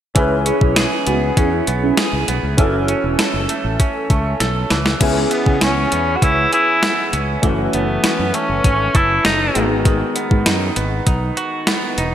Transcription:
0.15 0.50 C#2 medium
0.15 2.58 E3 medium
0.15 2.54 C#4 medium
0.15 2.54 E4 medium
0.15 2.54 G#4 medium
0.15 2.55 B4 medium
0.15 kick loud
0.15 closed hi-hat medium
0.46 1.37 C#4 medium
0.46 0.58 E4 medium
0.46 0.58 G#4 medium
0.46 0.58 B4 medium
0.46 closed hi-hat medium
0.61 0.84 B1 medium
0.61 0.73 C#4 medium
0.61 0.73 E4 medium
0.61 0.73 G#4 medium
0.61 kick medium
0.76 1.97 G#4 medium
0.76 snare loud
0.76 closed hi-hat loud
1.07 1.29 C#2 medium
1.07 1.19 B3 medium
1.07 1.66 B3 medium
1.07 1.19 D#4 medium
1.07 1.19 F#4 medium
1.07 closed hi-hat medium
1.37 1.60 E2 medium
1.37 1.49 C#4 medium
1.37 2.88 C#4 medium
1.37 1.49 E4 medium
1.37 1.49 G#4 medium
1.37 kick medium
1.37 closed hi-hat medium
1.52 1.64 E4 medium
1.52 1.64 G#4 medium
1.52 1.64 B4 medium
1.67 1.90 B1 medium
1.67 2.27 B3 medium
1.67 closed hi-hat medium
1.82 1.95 C#4 loud
1.82 1.95 E4 loud
1.82 1.95 G#4 loud
1.97 2.64 G#4 medium
1.97 snare loud
1.97 closed hi-hat medium
2.13 2.24 C#2 medium
2.28 2.39 B1 medium
2.28 2.64 B3 medium
2.28 closed hi-hat medium
2.43 2.54 C#2 medium
2.57 2.92 F#1 medium
2.57 4.70 E3 medium
2.57 4.66 C#4 medium
2.57 4.66 E4 medium
2.57 4.67 F#4 medium
2.57 4.67 A4 medium
2.57 kick loud
2.57 closed hi-hat medium
2.88 3.80 C#4 medium
2.88 closed hi-hat medium
3.04 3.15 E1 medium
3.19 4.39 A4 medium
3.19 snare loud
3.19 closed hi-hat loud
3.34 3.45 F#1 medium
3.49 4.09 A3 medium
3.49 closed hi-hat medium
3.64 3.76 A1 medium
3.80 5.34 C#4 medium
3.80 kick medium
3.80 closed hi-hat medium
4.10 4.33 C#2 medium
4.10 4.77 A3 medium
4.10 kick medium
4.10 closed hi-hat medium
4.40 4.63 B1 medium
4.40 4.77 A4 medium
4.40 snare medium
4.40 closed hi-hat medium
4.70 4.93 C#2 medium
4.70 5.00 E3 medium
4.70 snare medium
4.70 closed hi-hat medium
4.86 snare medium
5.00 5.23 C#2 medium
5.00 7.43 E3 medium
5.00 7.39 B3 medium
5.00 7.39 C#4 medium
5.00 7.39 E4 medium
5.00 7.40 G#4 medium
5.00 kick loud
5.00 closed hi-hat medium
5.00 crash medium
5.31 5.91 B3 medium
5.31 5.64 B3 medium
5.31 closed hi-hat medium
5.46 5.58 C#3 medium
5.46 kick medium
5.61 5.84 C#2 medium
5.61 6.22 C#4 medium
5.61 6.17 C#4 medium
5.61 snare loud
5.61 closed hi-hat medium
5.92 6.15 E2 medium
5.92 6.82 B3 medium
5.92 closed hi-hat medium
6.16 6.25 F#4 medium
6.22 6.45 C#2 medium
6.22 7.13 C#4 medium
6.22 6.53 E4 medium
6.22 kick medium
6.22 closed hi-hat medium
6.53 7.10 E4 medium
6.53 7.49 G#4 medium
6.53 closed hi-hat medium
6.83 7.49 B3 medium
6.83 snare loud
6.83 closed hi-hat medium
7.13 7.36 C#2 medium
7.13 8.04 C#4 medium
7.13 closed hi-hat medium
7.42 7.66 F#1 medium
7.42 9.55 E3 medium
7.42 9.51 E3 medium
7.42 9.51 A3 medium
7.42 9.51 C#4 medium
7.42 9.52 F#4 medium
7.42 kick loud
7.42 closed hi-hat medium
7.73 7.96 F#1 medium
7.73 8.33 A3 medium
7.73 8.36 B3 medium
7.73 closed hi-hat medium
8.04 8.63 C#4 medium
8.04 muted fretless electric bass stroke soft
8.04 snare loud
8.04 closed hi-hat medium
8.19 8.30 F#2 medium
8.34 9.24 A3 medium
8.34 8.97 C#4 medium
8.34 closed hi-hat medium
8.49 8.61 F#1 medium
8.64 8.87 G#1 medium
8.64 9.61 C#4 medium
8.64 kick medium
8.64 closed hi-hat medium
8.95 9.17 F#1 medium
8.95 9.25 E4 medium
8.95 9.61 A4 medium
8.95 kick medium
8.95 closed hi-hat medium
9.25 9.48 F#1 medium
9.25 9.61 A3 medium
9.25 9.68 D#4 medium
9.25 snare loud
9.25 closed hi-hat medium
9.54 10.01 G#1 medium
9.54 9.84 D#3 medium
9.54 11.93 G#3 medium
9.54 9.61 A3 soft
9.54 11.94 D#4 medium
9.54 11.94 F#4 medium
9.54 closed hi-hat medium
9.61 11.97 B3 medium
9.85 12.15 D#3 medium
9.85 kick loud
9.85 closed hi-hat medium
10.16 10.75 B3 medium
10.16 closed hi-hat medium
10.31 10.42 G#2 loud
10.31 kick medium
10.46 10.69 F#2 medium
10.46 11.05 D#4 medium
10.46 snare loud
10.46 closed hi-hat loud
10.76 10.99 G#1 medium
10.76 11.66 B3 medium
10.76 closed hi-hat medium
11.07 11.29 B1 medium
11.07 11.97 D#4 medium
11.07 kick medium
11.07 closed hi-hat medium
11.37 12.15 F#4 medium
11.37 closed hi-hat medium
11.67 12.15 B3 medium
11.67 snare loud
11.67 closed hi-hat medium
11.98 12.15 E1 medium
11.98 12.15 D#4 medium
11.98 closed hi-hat medium

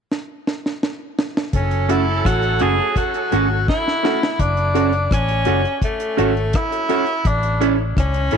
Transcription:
0.12 snare medium
0.47 snare medium
0.66 snare medium
0.83 snare medium
1.19 snare medium
1.37 snare loud
1.53 2.21 F#1 medium
1.53 3.99 F#3 medium
1.53 3.99 C#4 medium
1.53 1.92 C#4 medium
1.53 3.99 A4 medium
1.53 kick loud
1.53 closed hi-hat loud
1.71 closed hi-hat soft
1.88 2.06 A3 medium
1.88 2.04 C#4 medium
1.88 2.06 C#4 medium
1.88 2.27 E4 medium
1.88 2.06 F#4 medium
1.88 2.04 F#4 medium
1.88 2.04 A4 medium
1.88 closed hi-hat medium
2.25 2.58 A1 medium
2.25 2.64 F#4 loud
2.25 kick loud
2.25 cross-stick loud
2.25 closed hi-hat medium
2.43 closed hi-hat soft
2.59 2.78 F#1 medium
2.59 2.77 A3 medium
2.59 2.75 C#4 medium
2.59 2.78 C#4 medium
2.59 2.78 F#4 medium
2.59 2.76 F#4 medium
2.59 2.97 G#4 loud
2.59 2.76 A4 medium
2.59 closed hi-hat medium
2.80 muted clean electric guitar stroke soft
2.96 3.64 F#4 loud
2.96 kick medium
2.96 closed hi-hat medium
3.14 closed hi-hat medium
3.31 3.66 G#1 medium
3.31 3.49 A3 medium
3.31 3.49 C#4 medium
3.31 3.47 C#4 medium
3.31 3.49 F#4 loud
3.31 3.47 F#4 loud
3.31 3.48 A4 medium
3.31 closed hi-hat medium
3.50 3.57 C#4 soft
3.50 3.57 F#4 soft
3.68 4.42 E4 loud
3.68 kick loud
3.68 snare medium
3.86 3.93 C#4 soft
3.86 3.93 F#4 soft
3.86 snare medium
4.03 4.20 A3 medium
4.03 4.20 C#4 medium
4.03 4.18 C#4 medium
4.03 4.21 F#4 loud
4.03 4.19 F#4 medium
4.03 4.19 A4 medium
4.03 snare medium
4.23 snare medium
4.39 5.07 F#1 medium
4.39 5.11 D4 loud
4.39 kick loud
4.39 closed hi-hat loud
4.57 closed hi-hat soft
4.74 4.89 C#4 medium
4.74 4.91 F#4 medium
4.74 4.90 F#4 medium
4.74 4.92 A4 medium
4.74 4.90 A4 medium
4.74 4.92 C#5 medium
4.74 closed hi-hat medium
4.93 closed hi-hat soft
5.11 5.44 A1 medium
5.11 5.79 C#4 loud
5.11 kick loud
5.11 cross-stick loud
5.11 closed hi-hat loud
5.28 closed hi-hat soft
5.45 5.64 F#1 medium
5.45 5.61 C#4 medium
5.45 5.63 F#4 medium
5.45 5.61 F#4 medium
5.45 5.63 A4 medium
5.45 5.61 A4 loud
5.45 5.64 C#5 medium
5.45 closed hi-hat medium
5.65 muted clean electric guitar stroke soft
5.65 closed hi-hat soft
5.82 6.58 A3 medium
5.82 kick loud
5.82 closed hi-hat medium
6.00 closed hi-hat medium
6.17 6.51 G#1 loud
6.17 6.32 C#4 medium
6.17 6.35 F#4 medium
6.17 6.32 F#4 loud
6.17 6.35 A4 medium
6.17 6.33 A4 medium
6.17 6.35 C#5 loud
6.17 closed hi-hat medium
6.36 6.43 A4 soft
6.36 6.43 C#5 soft
6.36 closed hi-hat soft
6.53 7.29 E4 loud
6.53 kick loud
6.53 cross-stick loud
6.53 closed hi-hat medium
6.72 6.79 A4 soft
6.72 6.79 C#5 soft
6.72 closed hi-hat soft
6.89 7.04 C#4 medium
6.89 7.06 F#4 medium
6.89 7.04 F#4 medium
6.89 7.06 A4 medium
6.89 7.04 A4 medium
6.89 7.06 C#5 loud
6.89 closed hi-hat medium
7.07 closed hi-hat soft
7.25 7.93 A1 loud
7.25 7.71 D4 medium
7.25 kick loud
7.25 closed hi-hat loud
7.43 closed hi-hat soft
7.60 7.75 C#4 loud
7.60 7.77 E4 medium
7.60 7.76 E4 loud
7.60 7.78 A4 medium
7.60 7.76 A4 medium
7.60 7.78 C#5 medium
7.60 closed hi-hat medium
7.97 8.30 C#2 medium
7.97 8.37 C#4 loud
7.97 kick loud
7.97 cross-stick loud
7.97 closed hi-hat medium
8.14 closed hi-hat soft
8.31 8.37 A1 medium
8.31 8.37 C#4 medium
8.31 8.37 E4 medium
8.31 8.37 A4 medium
8.31 8.37 C#5 medium
8.31 closed hi-hat medium

